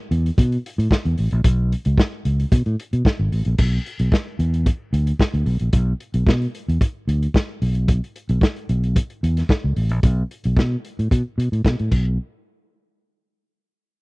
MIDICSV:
0, 0, Header, 1, 3, 480
1, 0, Start_track
1, 0, Tempo, 537153
1, 1290, Time_signature, 4, 2, 24, 8
1, 12526, End_track
2, 0, Start_track
2, 0, Title_t, "Fingered electric bass"
2, 0, Program_c, 0, 33
2, 98, Note_on_c, 0, 40, 90
2, 262, Note_off_c, 0, 40, 0
2, 341, Note_on_c, 0, 47, 114
2, 503, Note_off_c, 0, 47, 0
2, 700, Note_on_c, 0, 45, 102
2, 777, Note_off_c, 0, 45, 0
2, 941, Note_on_c, 0, 40, 92
2, 1018, Note_off_c, 0, 40, 0
2, 1061, Note_on_c, 0, 33, 97
2, 1145, Note_off_c, 0, 33, 0
2, 1183, Note_on_c, 0, 34, 94
2, 1259, Note_off_c, 0, 34, 0
2, 1292, Note_on_c, 0, 35, 105
2, 1545, Note_off_c, 0, 35, 0
2, 1662, Note_on_c, 0, 37, 97
2, 1738, Note_off_c, 0, 37, 0
2, 2013, Note_on_c, 0, 37, 87
2, 2177, Note_off_c, 0, 37, 0
2, 2252, Note_on_c, 0, 47, 99
2, 2338, Note_off_c, 0, 47, 0
2, 2378, Note_on_c, 0, 45, 86
2, 2455, Note_off_c, 0, 45, 0
2, 2618, Note_on_c, 0, 47, 85
2, 2694, Note_off_c, 0, 47, 0
2, 2854, Note_on_c, 0, 32, 96
2, 2932, Note_off_c, 0, 32, 0
2, 2969, Note_on_c, 0, 33, 94
2, 3056, Note_off_c, 0, 33, 0
2, 3094, Note_on_c, 0, 34, 90
2, 3172, Note_off_c, 0, 34, 0
2, 3209, Note_on_c, 0, 35, 96
2, 3373, Note_off_c, 0, 35, 0
2, 3572, Note_on_c, 0, 35, 100
2, 3650, Note_off_c, 0, 35, 0
2, 3923, Note_on_c, 0, 40, 88
2, 4177, Note_off_c, 0, 40, 0
2, 4402, Note_on_c, 0, 38, 94
2, 4569, Note_off_c, 0, 38, 0
2, 4769, Note_on_c, 0, 38, 97
2, 4847, Note_off_c, 0, 38, 0
2, 4877, Note_on_c, 0, 35, 106
2, 4967, Note_off_c, 0, 35, 0
2, 5010, Note_on_c, 0, 34, 91
2, 5088, Note_off_c, 0, 34, 0
2, 5126, Note_on_c, 0, 35, 107
2, 5290, Note_off_c, 0, 35, 0
2, 5488, Note_on_c, 0, 35, 98
2, 5566, Note_off_c, 0, 35, 0
2, 5603, Note_on_c, 0, 47, 93
2, 5769, Note_off_c, 0, 47, 0
2, 5973, Note_on_c, 0, 40, 83
2, 6049, Note_off_c, 0, 40, 0
2, 6322, Note_on_c, 0, 38, 89
2, 6488, Note_off_c, 0, 38, 0
2, 6807, Note_on_c, 0, 35, 92
2, 7137, Note_off_c, 0, 35, 0
2, 7412, Note_on_c, 0, 35, 104
2, 7489, Note_off_c, 0, 35, 0
2, 7769, Note_on_c, 0, 35, 97
2, 8020, Note_off_c, 0, 35, 0
2, 8249, Note_on_c, 0, 40, 85
2, 8413, Note_off_c, 0, 40, 0
2, 8616, Note_on_c, 0, 37, 81
2, 8692, Note_off_c, 0, 37, 0
2, 8726, Note_on_c, 0, 33, 97
2, 8854, Note_off_c, 0, 33, 0
2, 8854, Note_on_c, 0, 34, 85
2, 8931, Note_off_c, 0, 34, 0
2, 8967, Note_on_c, 0, 35, 108
2, 9132, Note_off_c, 0, 35, 0
2, 9342, Note_on_c, 0, 35, 100
2, 9416, Note_off_c, 0, 35, 0
2, 9442, Note_on_c, 0, 47, 99
2, 9609, Note_off_c, 0, 47, 0
2, 9821, Note_on_c, 0, 45, 79
2, 9896, Note_off_c, 0, 45, 0
2, 9934, Note_on_c, 0, 47, 109
2, 10019, Note_off_c, 0, 47, 0
2, 10167, Note_on_c, 0, 47, 101
2, 10255, Note_off_c, 0, 47, 0
2, 10295, Note_on_c, 0, 45, 86
2, 10372, Note_off_c, 0, 45, 0
2, 10410, Note_on_c, 0, 47, 83
2, 10497, Note_off_c, 0, 47, 0
2, 10544, Note_on_c, 0, 45, 85
2, 10619, Note_off_c, 0, 45, 0
2, 10649, Note_on_c, 0, 35, 103
2, 10872, Note_off_c, 0, 35, 0
2, 12526, End_track
3, 0, Start_track
3, 0, Title_t, "Drums"
3, 102, Note_on_c, 9, 42, 63
3, 192, Note_off_c, 9, 42, 0
3, 233, Note_on_c, 9, 42, 46
3, 322, Note_off_c, 9, 42, 0
3, 338, Note_on_c, 9, 36, 122
3, 348, Note_on_c, 9, 42, 82
3, 428, Note_off_c, 9, 36, 0
3, 437, Note_off_c, 9, 42, 0
3, 467, Note_on_c, 9, 42, 38
3, 556, Note_off_c, 9, 42, 0
3, 591, Note_on_c, 9, 42, 81
3, 680, Note_off_c, 9, 42, 0
3, 711, Note_on_c, 9, 42, 57
3, 800, Note_off_c, 9, 42, 0
3, 811, Note_on_c, 9, 36, 100
3, 822, Note_on_c, 9, 38, 100
3, 900, Note_off_c, 9, 36, 0
3, 911, Note_off_c, 9, 38, 0
3, 943, Note_on_c, 9, 42, 36
3, 1032, Note_off_c, 9, 42, 0
3, 1050, Note_on_c, 9, 46, 60
3, 1140, Note_off_c, 9, 46, 0
3, 1170, Note_on_c, 9, 42, 47
3, 1259, Note_off_c, 9, 42, 0
3, 1289, Note_on_c, 9, 42, 88
3, 1290, Note_on_c, 9, 36, 127
3, 1379, Note_off_c, 9, 42, 0
3, 1380, Note_off_c, 9, 36, 0
3, 1540, Note_on_c, 9, 42, 64
3, 1629, Note_off_c, 9, 42, 0
3, 1653, Note_on_c, 9, 42, 53
3, 1742, Note_off_c, 9, 42, 0
3, 1765, Note_on_c, 9, 36, 115
3, 1783, Note_on_c, 9, 38, 114
3, 1855, Note_off_c, 9, 36, 0
3, 1872, Note_off_c, 9, 38, 0
3, 2012, Note_on_c, 9, 42, 64
3, 2102, Note_off_c, 9, 42, 0
3, 2142, Note_on_c, 9, 42, 47
3, 2231, Note_off_c, 9, 42, 0
3, 2250, Note_on_c, 9, 36, 126
3, 2256, Note_on_c, 9, 42, 81
3, 2340, Note_off_c, 9, 36, 0
3, 2345, Note_off_c, 9, 42, 0
3, 2375, Note_on_c, 9, 42, 32
3, 2465, Note_off_c, 9, 42, 0
3, 2499, Note_on_c, 9, 42, 81
3, 2588, Note_off_c, 9, 42, 0
3, 2618, Note_on_c, 9, 42, 56
3, 2707, Note_off_c, 9, 42, 0
3, 2725, Note_on_c, 9, 36, 108
3, 2737, Note_on_c, 9, 38, 101
3, 2815, Note_off_c, 9, 36, 0
3, 2826, Note_off_c, 9, 38, 0
3, 2970, Note_on_c, 9, 46, 60
3, 3059, Note_off_c, 9, 46, 0
3, 3082, Note_on_c, 9, 42, 53
3, 3172, Note_off_c, 9, 42, 0
3, 3202, Note_on_c, 9, 49, 100
3, 3205, Note_on_c, 9, 36, 117
3, 3291, Note_off_c, 9, 49, 0
3, 3295, Note_off_c, 9, 36, 0
3, 3452, Note_on_c, 9, 42, 60
3, 3542, Note_off_c, 9, 42, 0
3, 3568, Note_on_c, 9, 42, 53
3, 3657, Note_off_c, 9, 42, 0
3, 3681, Note_on_c, 9, 36, 118
3, 3697, Note_on_c, 9, 38, 115
3, 3770, Note_off_c, 9, 36, 0
3, 3786, Note_off_c, 9, 38, 0
3, 3928, Note_on_c, 9, 42, 60
3, 4017, Note_off_c, 9, 42, 0
3, 4055, Note_on_c, 9, 42, 48
3, 4144, Note_off_c, 9, 42, 0
3, 4166, Note_on_c, 9, 36, 121
3, 4167, Note_on_c, 9, 42, 86
3, 4255, Note_off_c, 9, 36, 0
3, 4256, Note_off_c, 9, 42, 0
3, 4412, Note_on_c, 9, 42, 77
3, 4502, Note_off_c, 9, 42, 0
3, 4530, Note_on_c, 9, 42, 56
3, 4619, Note_off_c, 9, 42, 0
3, 4642, Note_on_c, 9, 36, 105
3, 4652, Note_on_c, 9, 38, 106
3, 4731, Note_off_c, 9, 36, 0
3, 4741, Note_off_c, 9, 38, 0
3, 4773, Note_on_c, 9, 42, 36
3, 4862, Note_off_c, 9, 42, 0
3, 4881, Note_on_c, 9, 46, 51
3, 4971, Note_off_c, 9, 46, 0
3, 4999, Note_on_c, 9, 42, 50
3, 5088, Note_off_c, 9, 42, 0
3, 5118, Note_on_c, 9, 42, 96
3, 5121, Note_on_c, 9, 36, 124
3, 5207, Note_off_c, 9, 42, 0
3, 5210, Note_off_c, 9, 36, 0
3, 5365, Note_on_c, 9, 42, 54
3, 5455, Note_off_c, 9, 42, 0
3, 5485, Note_on_c, 9, 42, 56
3, 5574, Note_off_c, 9, 42, 0
3, 5599, Note_on_c, 9, 36, 122
3, 5617, Note_on_c, 9, 38, 119
3, 5688, Note_off_c, 9, 36, 0
3, 5706, Note_off_c, 9, 38, 0
3, 5734, Note_on_c, 9, 42, 37
3, 5824, Note_off_c, 9, 42, 0
3, 5850, Note_on_c, 9, 42, 63
3, 5939, Note_off_c, 9, 42, 0
3, 5981, Note_on_c, 9, 42, 47
3, 6070, Note_off_c, 9, 42, 0
3, 6085, Note_on_c, 9, 36, 122
3, 6090, Note_on_c, 9, 42, 81
3, 6174, Note_off_c, 9, 36, 0
3, 6180, Note_off_c, 9, 42, 0
3, 6333, Note_on_c, 9, 42, 75
3, 6423, Note_off_c, 9, 42, 0
3, 6457, Note_on_c, 9, 42, 53
3, 6546, Note_off_c, 9, 42, 0
3, 6562, Note_on_c, 9, 36, 110
3, 6575, Note_on_c, 9, 38, 123
3, 6651, Note_off_c, 9, 36, 0
3, 6664, Note_off_c, 9, 38, 0
3, 6807, Note_on_c, 9, 46, 62
3, 6897, Note_off_c, 9, 46, 0
3, 6925, Note_on_c, 9, 42, 48
3, 7014, Note_off_c, 9, 42, 0
3, 7044, Note_on_c, 9, 36, 122
3, 7045, Note_on_c, 9, 42, 86
3, 7134, Note_off_c, 9, 36, 0
3, 7134, Note_off_c, 9, 42, 0
3, 7183, Note_on_c, 9, 42, 36
3, 7272, Note_off_c, 9, 42, 0
3, 7289, Note_on_c, 9, 42, 59
3, 7378, Note_off_c, 9, 42, 0
3, 7408, Note_on_c, 9, 42, 55
3, 7497, Note_off_c, 9, 42, 0
3, 7518, Note_on_c, 9, 36, 115
3, 7535, Note_on_c, 9, 38, 108
3, 7607, Note_off_c, 9, 36, 0
3, 7624, Note_off_c, 9, 38, 0
3, 7651, Note_on_c, 9, 42, 33
3, 7740, Note_off_c, 9, 42, 0
3, 7767, Note_on_c, 9, 42, 61
3, 7856, Note_off_c, 9, 42, 0
3, 7896, Note_on_c, 9, 42, 41
3, 7985, Note_off_c, 9, 42, 0
3, 8006, Note_on_c, 9, 36, 113
3, 8009, Note_on_c, 9, 42, 85
3, 8095, Note_off_c, 9, 36, 0
3, 8098, Note_off_c, 9, 42, 0
3, 8131, Note_on_c, 9, 42, 38
3, 8221, Note_off_c, 9, 42, 0
3, 8255, Note_on_c, 9, 42, 77
3, 8345, Note_off_c, 9, 42, 0
3, 8373, Note_on_c, 9, 42, 52
3, 8381, Note_on_c, 9, 38, 39
3, 8462, Note_off_c, 9, 42, 0
3, 8470, Note_off_c, 9, 38, 0
3, 8482, Note_on_c, 9, 36, 116
3, 8492, Note_on_c, 9, 38, 115
3, 8571, Note_off_c, 9, 36, 0
3, 8581, Note_off_c, 9, 38, 0
3, 8725, Note_on_c, 9, 46, 59
3, 8814, Note_off_c, 9, 46, 0
3, 8841, Note_on_c, 9, 42, 53
3, 8930, Note_off_c, 9, 42, 0
3, 8964, Note_on_c, 9, 36, 127
3, 8965, Note_on_c, 9, 42, 83
3, 9054, Note_off_c, 9, 36, 0
3, 9054, Note_off_c, 9, 42, 0
3, 9213, Note_on_c, 9, 42, 56
3, 9303, Note_off_c, 9, 42, 0
3, 9328, Note_on_c, 9, 42, 50
3, 9418, Note_off_c, 9, 42, 0
3, 9441, Note_on_c, 9, 36, 123
3, 9463, Note_on_c, 9, 38, 118
3, 9531, Note_off_c, 9, 36, 0
3, 9552, Note_off_c, 9, 38, 0
3, 9692, Note_on_c, 9, 42, 58
3, 9782, Note_off_c, 9, 42, 0
3, 9823, Note_on_c, 9, 42, 48
3, 9912, Note_off_c, 9, 42, 0
3, 9930, Note_on_c, 9, 36, 110
3, 9937, Note_on_c, 9, 42, 79
3, 10020, Note_off_c, 9, 36, 0
3, 10026, Note_off_c, 9, 42, 0
3, 10184, Note_on_c, 9, 42, 74
3, 10273, Note_off_c, 9, 42, 0
3, 10304, Note_on_c, 9, 42, 52
3, 10394, Note_off_c, 9, 42, 0
3, 10406, Note_on_c, 9, 36, 106
3, 10418, Note_on_c, 9, 38, 113
3, 10495, Note_off_c, 9, 36, 0
3, 10507, Note_off_c, 9, 38, 0
3, 10538, Note_on_c, 9, 42, 33
3, 10628, Note_off_c, 9, 42, 0
3, 10648, Note_on_c, 9, 36, 95
3, 10648, Note_on_c, 9, 49, 84
3, 10737, Note_off_c, 9, 36, 0
3, 10738, Note_off_c, 9, 49, 0
3, 12526, End_track
0, 0, End_of_file